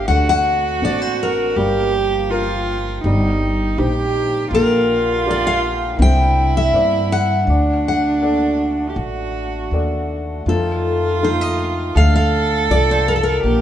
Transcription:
0.08 D2 D3 C4 F#4 F#5
0.29 F#5
0.82 A1 C4 D4 F#4 D5
1.02 C5
1.23 A#4
1.55 G1 F3 G3 A#3 G4
2.30 F4 G4 A#4
3.03 G1 D#3 G3 C4 D#4
3.78 A#1 D#4 G4 C5
4.51 A#1 D3 A#3 F4 A#4
5.26 G4 A#4 D5
5.31 D5
5.47 F5
5.98 C2 C4 E4
6.02 G5
6.57 E5
6.73 G2 C5 D5 E5
7.12 F#5
7.47 D2 A3 D4 F#4
7.88 F#5
8.22 A4 D5 F#5
8.90 G4
8.96 A1 F#4
9.71 D#2 A4 D5 F#5
10.46 F2 D#3 F3 F4 A4
11.23 D#4 F4 A4 C5
11.41 D#5
11.95 D2 D3 A4 F5
12.16 F5
12.70 C2 D4 F4 A4 D5
12.91 C5
13.08 A#4
13.16 A4
13.23 A#4
13.44 A#1 A#3 G4

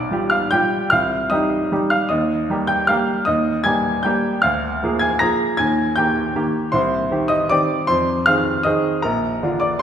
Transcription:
Already playing: B1 D5 D6
0.11 G3 F4 G4
0.30 F5 F6
0.51 G3 F4 G4 G5 G6
0.90 C2 F5 F6
1.30 G3 D#4 G4 D#5 D#6
1.72 G3 D#4 G4
1.90 F5 F6
2.09 D#2 D#5 D#6
2.50 G3 A#3 G4
2.67 G5 G6
2.87 G3 A#3 G4 F5 F6
3.25 D#2 D#5 D#6
3.64 G3 A#3 G4 G#5 G#6
4.03 G3 A#3 G4 G5 G6
4.42 D2 F5 F6
4.83 F3 A#3 G#4
4.99 G#5 G#6
5.19 F3 A#3 G#4 A#5 A#6
5.57 D#2 G#5 G#6
5.96 D#3 A#3 G4 G5 G6
6.36 D#3 A#3 G4
6.72 C2 C5 C6
7.11 D#3 C4 G4
7.28 D#5 D#6
7.49 D#3 C4 G4 D5 D6
7.87 F2 C5 C6
8.26 D#3 C4 G#4 F5 F6
8.63 D#3 C4 G#4 D#5 D#6
9.02 A#1 A#4 A#5
9.43 D3 D4 F4
9.60 D5 D6

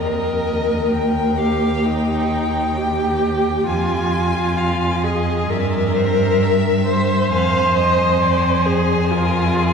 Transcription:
Already playing: A#4
0.01 D#2 D#5 G5
0.93 G5
1.39 G4 F5
1.84 D#4 G5
2.76 G4
3.66 F2 F4 G#5
4.58 F5
5.03 G#4 D#5
5.50 G2 A#4 D5 E5
5.96 C5
6.43 E5
6.87 C5
7.31 F2 F5 G#5
7.76 D#5
8.21 D5
8.65 G#4 C5
9.10 F4 A#4
9.56 G#4

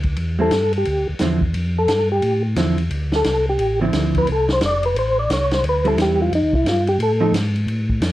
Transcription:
Already playing: D2
0.03 kick, ride
0.16 E2, ride
0.39 G3 C4 E4 A4
0.51 G2, snare, hi-hat pedal, ride
0.72 ride
0.77 G4
0.85 D2, ride
1.08 D2
1.19 E2 D3 F3 C4 E4, snare, hi-hat pedal, ride
1.41 kick
1.54 F2, ride
1.78 A4
1.88 G2, snare, hi-hat pedal, ride
2.12 G4
2.22 A2, ride
2.56 E2 D3 F3 C4 E4, snare, hi-hat pedal, ride
2.78 ride
2.91 D2, ride
3.12 A4, snare
3.25 C2, snare, hi-hat pedal, ride
3.50 G4
3.58 A1, ride
3.81 D3 F3 C4 E4
3.93 D2, snare, hi-hat pedal, ride
4.14 B4, kick, ride
4.27 C2, ride
4.32 A4
4.48 C5, snare
4.61 F1, snare, hi-hat pedal, ride
4.66 D5
4.83 B4, ride
4.95 A1 C5, ride
5.19 D5
5.29 C2 C#5, snare, hi-hat pedal, ride
5.51 C5, snare, ride
5.63 D2, ride
5.69 B4
5.85 G3 C4 E4 A4, ride
5.97 E2, snare, hi-hat pedal, ride
6.02 G4
6.22 F4
6.31 F2 D#4, ride
6.42 D#2
6.53 C2 E4, kick
6.64 G2, snare, hi-hat pedal, ride
6.69 F4
6.87 G4, ride
6.99 A2 A4, ride
7.20 F3 C4 D#4 A4
7.32 G#2, snare, hi-hat pedal, ride
7.55 ride
7.66 A2, ride
7.89 kick
8.01 F2, snare, hi-hat pedal, ride

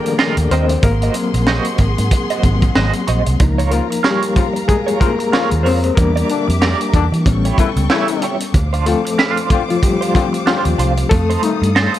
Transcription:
Already playing: D#3 F3 G3 A3 A#3 D4 G4 G#4 A4 A#4 D5 F5 G5
0.06 muted clean electric guitar stroke, closed hi-hat
0.19 F4 A#4 D#5, snare
0.37 D#2, closed hi-hat
0.51 D#2 C4 F4 A#4 C5 D#5, closed hi-hat
0.69 muted clean electric guitar stroke, closed hi-hat
0.83 G#1 A#3 G#4 A#4 F#5 C6, muted clean electric guitar stroke, kick, closed hi-hat
1.02 F#4 C5 D#5, closed hi-hat
1.14 F#3 A#3 C4, muted clean electric guitar stroke, closed hi-hat
1.34 A#1, muted clean electric guitar stroke, closed hi-hat
1.47 F#4 C5 D#5, snare
1.65 closed hi-hat
1.78 G#1, muted clean electric guitar stroke, kick, closed hi-hat
1.98 G#2, muted clean electric guitar stroke, closed hi-hat
2.11 muted clean electric guitar stroke, kick, closed hi-hat
2.30 F#4 C5 D#5, closed hi-hat
2.43 G#1 F#3 A#3 C4, muted clean electric guitar stroke, kick, closed hi-hat
2.62 muted clean electric guitar stroke, kick, closed hi-hat
2.75 G#1 F#4 C5 D#5, snare
2.93 closed hi-hat
3.07 A#1 F#4 C5 D#5, closed hi-hat
3.26 C2, muted clean electric guitar stroke, closed hi-hat
3.40 C#2 F3 A#3 D#4 A#4 F5 A#5, muted clean electric guitar stroke, kick, closed hi-hat
3.58 F4 A#4 C#5, closed hi-hat
3.71 C#3 F3 A#3 F4 A#4, muted clean electric guitar stroke, closed hi-hat
3.90 muted clean electric guitar stroke, closed hi-hat
4.03 G3 F4 G4 A#4 C#5, snare
4.22 closed hi-hat
4.36 C#3 F3 A#3 F4, muted clean electric guitar stroke, kick, closed hi-hat
4.53 muted clean electric guitar stroke, closed hi-hat
4.68 G#3 G#4, muted clean electric guitar stroke, kick, closed hi-hat
4.86 F4 A#4 C#5, closed hi-hat
5.00 C#3 F3 A#3 F4 A#4, muted clean electric guitar stroke, kick, closed hi-hat
5.19 muted clean electric guitar stroke, closed hi-hat
5.32 C#3 F3 A#3 F4 A#4 C#5, snare
5.51 D#2, muted clean electric guitar stroke, closed hi-hat
5.63 F2 C4 F4 A#4 C5 C#5, open hi-hat
5.84 muted clean electric guitar stroke, closed hi-hat
5.95 E2 G3 A#3 D4 G4 A#4 E5 D6, muted clean electric guitar stroke, kick, closed hi-hat
6.16 G4 A#4 D5, closed hi-hat
6.29 A#2 D3 G3 D4, muted clean electric guitar stroke, closed hi-hat
6.48 F2, muted clean electric guitar stroke, closed hi-hat
6.61 G4 A#4 D5, snare
6.81 closed hi-hat
6.93 E2 A#2 D3 G3 D4, muted clean electric guitar stroke, kick, closed hi-hat
7.12 E3, muted clean electric guitar stroke, closed hi-hat
7.25 A1 G3 B3 C#4 A4 G5 C#6, muted clean electric guitar stroke, kick, closed hi-hat
7.45 E4 G4 C#5, closed hi-hat
7.58 C#3 E3 A3 E4, muted fingered electric bass stroke, kick, closed hi-hat
7.76 C#2, muted clean electric guitar stroke, closed hi-hat
7.90 C#3 E3 A3 E4 G4 C#5, snare
8.08 closed hi-hat
8.22 E4 G4 C#5, closed hi-hat
8.40 muted clean electric guitar stroke, closed hi-hat
8.54 D2 C5 F5 D6, muted clean electric guitar stroke, kick, closed hi-hat
8.73 D4 F4 C5, closed hi-hat
8.86 D3 F3 A3 C4 F4 A4, muted clean electric guitar stroke, closed hi-hat
9.05 muted clean electric guitar stroke, closed hi-hat
9.18 C#4 E4 B4, snare
9.31 D4 F4 C5
9.37 closed hi-hat
9.50 D3 F3 C4 F4, muted clean electric guitar stroke, kick, closed hi-hat
9.69 F3 F4, muted clean electric guitar stroke, closed hi-hat
9.82 G3 G4, muted clean electric guitar stroke, kick, closed hi-hat
10.01 D4 F4 C5, closed hi-hat
10.14 D3 F3 A3 C4 F4, muted clean electric guitar stroke, kick, closed hi-hat
10.33 muted clean electric guitar stroke, closed hi-hat
10.46 D3 F3 C4 D4 F4 C5, snare
10.65 D#2, muted clean electric guitar stroke, closed hi-hat
10.78 C2 D4 F4 C5, closed hi-hat
10.97 muted clean electric guitar stroke, closed hi-hat
11.09 F2 A3 A4 D#6, muted clean electric guitar stroke, kick, closed hi-hat
11.30 D#4 A4 C5, closed hi-hat
11.42 C3 D#3 G3 A3 D#4, muted clean electric guitar stroke, closed hi-hat
11.62 G2, muted clean electric guitar stroke, closed hi-hat
11.75 D#4 A4 C5, snare
11.94 closed hi-hat

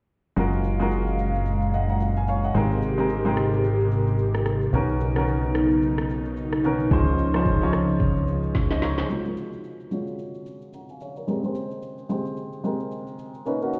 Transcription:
0.36 F#1 A#2 G#3 F4 F#4 A#4 F5, shaker
0.53 shaker
0.64 shaker
0.80 G#3 F4 F#4 A#4, shaker
0.91 shaker
1.07 shaker
1.19 shaker
1.34 shaker
1.46 shaker
1.62 shaker
1.73 D#5 F#5, shaker
1.89 F#5 A#5, shaker
2.00 shaker
2.16 F5 G#5, shaker
2.28 C#5 F5, shaker
2.43 D#5 F#5, shaker
2.54 G#1 C3 G#3 C4 G4 A#4, shaker
2.71 shaker
2.82 shaker
2.98 G#3 C4 G4 A#4, shaker
3.09 shaker
3.25 G#3 C4 G4 A#4, shaker
3.37 cross-stick, shaker
3.53 shaker
3.64 shaker
3.80 shaker
3.91 shaker
4.07 shaker
4.19 shaker
4.34 cross-stick, shaker
4.46 cross-stick, shaker
4.62 shaker
4.73 B1 C#3 D#3 B3 C#4 D#4 A#4, shaker
4.89 shaker
5.00 shaker
5.16 D#3 B3 C#4 A#4, cross-stick, shaker
5.27 shaker
5.43 shaker
5.55 cross-stick, shaker
5.71 shaker
5.82 shaker
5.98 cross-stick, shaker
6.09 shaker
6.25 shaker
6.37 shaker
6.52 cross-stick, shaker
6.64 D#3 B3 C#4 A#4, shaker
6.80 shaker
6.91 C#2 C#3 F3 C#4 D#4 C5, kick, shaker
7.07 shaker
7.18 shaker
7.34 F3 C#4 D#4 C5, cross-stick, shaker
7.45 kick, shaker
7.61 F3 C#4 D#4 C#5, shaker
7.73 cross-stick, shaker
7.89 shaker
8.00 kick, shaker
8.16 shaker
8.27 shaker
8.43 shaker
8.55 kick, snare, shaker
8.70 C5 D#5, snare, shaker
8.82 A#4 C#5, snare, shaker
8.98 G#4 C5, snare, shaker
9.09 G#3 F4 F#4 A#4, shaker
9.25 G#3 F4 F#4 A#4, shaker
9.37 shaker
9.53 shaker
9.64 shaker
9.80 shaker
9.91 G#3 F4 F#4 C#5, shaker
10.07 shaker
10.19 shaker
10.34 shaker
10.46 shaker
10.62 shaker
10.73 F#5 A#5, shaker
10.89 F5 G#5, shaker
11.00 C#5 F5, shaker
11.16 A#4 C#5, shaker
11.27 G#3 C4 G4 A#4, shaker
11.43 G#3 C4 G4 C5, shaker
11.55 shaker
11.71 shaker
11.82 shaker
11.98 shaker
12.09 G#3 C4 G4 C5, shaker
12.25 shaker
12.37 shaker
12.53 shaker
12.64 G#3 C4 G4 A#4, shaker
12.80 shaker
12.91 shaker
13.07 shaker
13.19 shaker
13.34 shaker
13.46 A#3 C#4 D#4 B4, shaker
13.61 A#3 C#4 D#4 F#4, shaker
13.73 shaker

